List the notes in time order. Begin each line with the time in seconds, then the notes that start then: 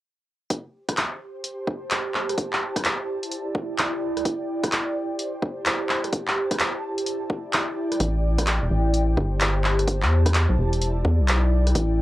0.50 G4, kick, closed hi-hat
0.64 C5
0.89 kick, cross-stick, closed hi-hat
0.97 clap, closed hi-hat
1.17 A5
1.44 closed hi-hat
1.67 kick
1.91 clap, closed hi-hat
2.14 clap
2.29 cross-stick, closed hi-hat
2.38 E4, kick, closed hi-hat
2.53 clap
2.68 D5
2.76 kick, cross-stick, closed hi-hat
2.85 clap, closed hi-hat
3.23 G5, closed hi-hat
3.31 closed hi-hat
3.55 kick
3.78 clap, closed hi-hat
4.17 cross-stick, closed hi-hat
4.25 G4, kick, closed hi-hat
4.48 C5
4.64 kick, cross-stick, closed hi-hat
4.72 clap, closed hi-hat
5.12 A5
5.19 closed hi-hat
5.42 kick
5.66 clap, closed hi-hat
5.89 clap
6.04 cross-stick, closed hi-hat
6.13 E4, kick, closed hi-hat
6.28 clap
6.51 kick, cross-stick, closed hi-hat
6.59 D5, clap, closed hi-hat
6.98 G5, closed hi-hat
7.06 closed hi-hat
7.30 kick
7.53 clap, closed hi-hat
7.92 cross-stick, closed hi-hat
8.00 A1 G4, kick, closed hi-hat
8.39 kick, cross-stick, closed hi-hat
8.45 C5, clap, closed hi-hat
8.62 E1
8.71 A1
8.87 A5
8.94 closed hi-hat
9.17 G1, kick
9.41 clap, closed hi-hat
9.64 clap
9.79 cross-stick, closed hi-hat
9.88 E4, kick, closed hi-hat
10.00 E2 D5, clap
10.26 kick, cross-stick, closed hi-hat
10.34 clap, closed hi-hat
10.49 B1
10.58 E1
10.73 G5, closed hi-hat
10.82 closed hi-hat
11.05 E2, kick
11.20 B1
11.28 clap, closed hi-hat
11.67 cross-stick, closed hi-hat
11.75 A1 G4, kick, closed hi-hat